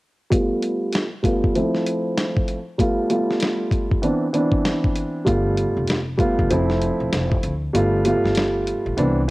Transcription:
0.30 1.04 G3 medium
0.30 1.04 A3 medium
0.30 1.04 B3 medium
0.30 1.05 F4 medium
0.30 kick loud
0.30 closed hi-hat loud
0.62 closed hi-hat medium
0.93 snare loud
0.93 closed hi-hat medium
1.23 1.55 G3 medium
1.23 1.55 A3 medium
1.23 1.55 B3 medium
1.23 1.55 F4 medium
1.23 kick medium
1.23 closed hi-hat medium
1.44 kick medium
1.55 2.56 F3 medium
1.55 2.57 A3 medium
1.55 2.57 C4 medium
1.55 2.57 E4 loud
1.55 closed hi-hat medium
1.75 snare soft
1.86 closed hi-hat medium
2.18 snare loud
2.18 closed hi-hat medium
2.37 kick medium
2.48 closed hi-hat medium
2.78 3.08 G3 medium
2.78 3.08 A3 medium
2.78 3.08 B3 medium
2.78 3.09 F4 loud
2.78 kick loud
2.78 closed hi-hat loud
3.10 4.03 G3 medium
3.10 4.03 A3 medium
3.10 4.01 B3 medium
3.10 4.04 F4 medium
3.10 closed hi-hat medium
3.31 snare soft
3.40 snare loud
3.40 closed hi-hat medium
3.71 kick medium
3.71 closed hi-hat medium
3.91 kick medium
4.02 4.25 E3 medium
4.02 4.25 B3 medium
4.02 4.25 C4 medium
4.02 4.26 D4 loud
4.02 closed hi-hat medium
4.33 5.20 E3 medium
4.33 5.21 B3 medium
4.33 5.21 C4 medium
4.33 5.21 D4 loud
4.33 closed hi-hat medium
4.52 kick medium
4.65 snare loud
4.65 closed hi-hat loud
4.84 kick medium
4.96 closed hi-hat medium
5.25 5.64 G1 loud
5.25 5.99 G3 medium
5.25 5.99 A3 medium
5.25 5.99 B3 medium
5.25 5.99 F4 loud
5.25 kick loud
5.25 closed hi-hat loud
5.57 closed hi-hat medium
5.77 6.23 F1 medium
5.87 snare loud
5.87 closed hi-hat medium
6.17 6.49 G3 medium
6.17 6.49 A3 medium
6.17 6.50 B3 medium
6.17 6.50 F4 loud
6.17 kick medium
6.17 closed hi-hat medium
6.39 6.48 G1 medium
6.39 kick medium
6.50 6.88 F1 loud
6.50 7.51 F3 medium
6.50 7.52 A3 medium
6.50 7.52 C4 medium
6.50 7.52 E4 medium
6.50 closed hi-hat medium
6.70 snare soft
6.82 closed hi-hat medium
7.00 7.09 E1 medium
7.13 7.36 F1 medium
7.13 snare loud
7.13 closed hi-hat medium
7.32 kick medium
7.43 7.67 D2 medium
7.43 closed hi-hat medium
7.73 8.11 G1 loud
7.73 8.03 G3 medium
7.73 8.03 A3 medium
7.73 8.03 B3 medium
7.73 8.03 F4 loud
7.73 closed hi-hat loud
8.05 8.98 G3 medium
8.05 8.98 A3 medium
8.05 8.96 B3 medium
8.05 8.98 F4 medium
8.05 closed hi-hat medium
8.24 8.70 G1 medium
8.24 snare soft
8.35 snare loud
8.35 closed hi-hat medium
8.67 closed hi-hat medium
8.86 8.95 A1 medium
8.97 9.30 C2 loud
8.97 9.19 E3 medium
8.97 9.20 B3 medium
8.97 9.20 C4 medium
8.97 9.20 D4 loud
8.97 closed hi-hat medium

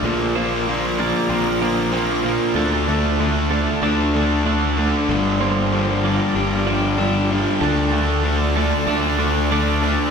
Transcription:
0.00 1.12 A#1 loud
0.00 1.29 D4 medium
0.00 5.07 F4 medium
0.00 2.54 C5 medium
0.00 0.39 D5 medium
0.00 5.07 D5 medium
0.00 2.54 A#5 medium
0.04 0.35 A#2 medium
0.04 0.36 F3 medium
0.04 0.36 A#3 medium
0.36 0.67 A#2 medium
0.36 0.68 F3 medium
0.36 0.68 A#3 medium
0.36 0.99 C5 medium
0.67 0.98 A#2 medium
0.67 1.60 D3 medium
0.67 1.00 F3 medium
0.67 0.99 A#3 medium
0.99 1.28 A#2 medium
0.99 1.29 F3 medium
0.99 1.29 A#3 medium
0.99 1.61 D5 medium
1.29 2.39 A#1 medium
1.29 1.60 A#2 medium
1.29 1.62 F3 medium
1.29 1.62 A#3 medium
1.29 1.92 C4 medium
1.61 1.91 A#2 medium
1.61 2.55 D3 medium
1.61 1.93 F3 medium
1.61 1.93 A#3 medium
1.61 3.83 D5 medium
1.93 2.23 A#2 medium
1.93 2.24 F3 medium
1.93 2.24 A#3 medium
1.93 2.56 C4 medium
2.24 2.54 A#2 medium
2.24 2.55 F3 medium
2.24 2.55 A#3 medium
2.54 3.65 D2 medium
2.54 2.87 D3 medium
2.54 2.88 A3 medium
2.54 2.89 D4 medium
2.54 5.06 A4 medium
2.54 3.20 A4 medium
2.54 5.06 A5 medium
2.88 3.19 D3 medium
2.88 3.19 A3 medium
2.88 3.21 D4 medium
3.20 3.50 D3 medium
3.20 3.51 A3 medium
3.20 3.52 D4 medium
3.51 3.81 D3 medium
3.51 3.82 A3 medium
3.51 3.84 D4 loud
3.51 3.82 A4 medium
3.82 4.92 D2 medium
3.82 4.13 D3 medium
3.82 4.14 A3 medium
3.82 4.15 D4 medium
3.82 4.46 D5 medium
4.14 4.44 D3 medium
4.14 4.44 A3 medium
4.14 4.46 D4 medium
4.45 4.76 D3 medium
4.45 4.77 A3 medium
4.45 4.79 D4 medium
4.45 5.44 D5 medium
4.78 5.08 D3 medium
4.78 5.08 A3 medium
4.78 7.63 D4 medium
5.08 6.18 G1 loud
5.08 5.39 G2 medium
5.08 5.40 D3 medium
5.08 5.40 G3 loud
5.08 7.61 F4 medium
5.08 7.61 A#4 medium
5.08 10.11 D5 medium
5.08 7.61 G5 medium
5.40 5.71 G2 medium
5.40 5.72 D3 medium
5.40 5.73 G3 medium
5.40 6.03 A#3 medium
5.40 6.04 C5 medium
5.72 6.03 G2 medium
5.72 6.04 D3 medium
5.72 6.66 F3 medium
5.72 6.04 G3 medium
6.04 6.34 G2 medium
6.04 6.35 D3 medium
6.04 6.35 G3 loud
6.04 7.29 A#3 medium
6.04 6.67 D5 medium
6.34 7.45 G1 medium
6.34 6.66 G2 medium
6.34 6.66 D3 medium
6.34 6.67 G3 medium
6.34 6.97 D4 medium
6.67 6.97 G2 medium
6.67 6.98 D3 medium
6.67 7.61 F3 medium
6.67 6.98 G3 medium
6.67 8.87 D5 medium
6.98 7.29 G2 medium
6.98 7.30 D3 medium
6.98 7.30 G3 medium
6.98 8.88 D4 medium
7.30 7.60 G2 medium
7.30 7.61 D3 medium
7.30 7.61 G3 medium
7.30 7.62 A#3 medium
7.61 8.71 D2 loud
7.61 7.92 D3 medium
7.61 7.92 A3 loud
7.61 7.94 D4 loud
7.61 10.11 F4 medium
7.61 8.25 A4 medium
7.61 10.11 A4 medium
7.61 10.11 A5 medium
7.93 8.22 D3 medium
7.93 8.23 A3 medium
7.93 8.25 D4 medium
8.24 8.55 D3 medium
8.24 8.56 A3 medium
8.24 8.57 D4 medium
8.56 8.86 D3 medium
8.56 8.87 A3 medium
8.56 8.88 D4 loud
8.56 8.87 A4 medium
8.87 9.97 D2 medium
8.87 9.17 D3 medium
8.87 9.18 A3 medium
8.87 9.19 D4 medium
8.87 9.52 D5 medium
9.18 9.50 D3 medium
9.18 9.51 A3 medium
9.18 9.52 D4 medium
9.51 9.82 D3 medium
9.51 9.82 A3 medium
9.51 9.84 D4 medium
9.51 10.11 D5 medium
9.83 10.11 D3 medium
9.83 10.11 A3 medium
9.83 10.11 D4 medium

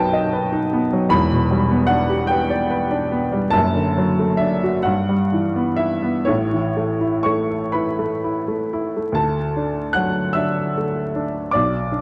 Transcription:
0.00 1.09 B1 medium
0.00 1.15 F#2 medium
0.00 0.93 F#3 medium
0.00 0.73 B3 medium
0.00 0.52 D#4 medium
0.00 1.15 F#4 medium
0.00 0.25 B4 medium
0.00 1.15 G5 loud
0.00 1.11 A5 loud
0.00 1.10 B5 loud
0.13 0.45 D#5 medium
0.33 0.65 B4 medium
0.52 0.85 D#4 medium
0.73 1.05 B3 medium
0.93 1.13 F#3 medium
1.09 3.50 E1 medium
1.09 3.49 E2 medium
1.09 1.89 B5 loud
1.32 1.63 B2 medium
1.51 1.82 G3 medium
1.71 2.03 B3 medium
1.87 2.22 D4 medium
1.87 2.29 F#5 loud
2.09 2.42 G4 medium
2.27 2.63 B4 medium
2.27 3.53 G5 loud
2.50 2.83 D5 medium
2.70 3.04 B4 medium
2.91 3.25 D4 medium
3.12 3.46 B3 medium
3.32 3.54 G3 medium
3.50 4.82 F#1 medium
3.50 4.82 F#2 medium
3.50 4.40 A5 loud
3.75 4.10 D3 medium
3.98 4.33 F#3 medium
4.19 4.55 A3 medium
4.37 4.77 D4 medium
4.37 4.85 E5 medium
4.63 4.87 F#4 medium
4.83 6.24 G2 medium
4.83 5.78 F#5 medium
5.09 5.47 G3 medium
5.32 5.70 E3 medium
5.56 5.94 B3 medium
5.76 6.18 E4 medium
5.76 6.27 E5 medium
6.02 6.28 B3 medium
6.25 9.12 A1 medium
6.25 9.13 A2 medium
6.25 7.23 C#5 medium
6.52 6.92 E3 soft
6.77 7.17 A3 medium
7.01 7.41 E4 medium
7.23 7.66 A3 medium
7.23 7.71 C#5 medium
7.23 7.74 C#6 medium
7.51 7.90 A4 soft
7.72 8.14 E4 medium
7.72 9.12 B4 medium
7.72 9.15 B5 medium
7.99 8.38 A3 medium
8.24 8.63 E4 medium
8.48 8.87 A3 medium
8.73 9.09 E4 medium
8.97 9.17 A3 soft
9.12 11.47 D2 medium
9.12 9.95 A5 medium
9.17 9.92 A4 medium
9.56 10.20 D4 medium
9.93 10.60 F#3 soft
9.93 10.32 F#5 medium
9.93 10.35 F#6 medium
10.33 11.00 D4 medium
10.33 11.49 E5 medium
10.33 11.52 E6 medium
10.77 11.39 A3 medium
11.16 11.54 D4 medium
11.51 12.01 B1 medium
11.51 12.01 D5 medium
11.51 12.01 D6 medium
11.92 12.01 D4 medium

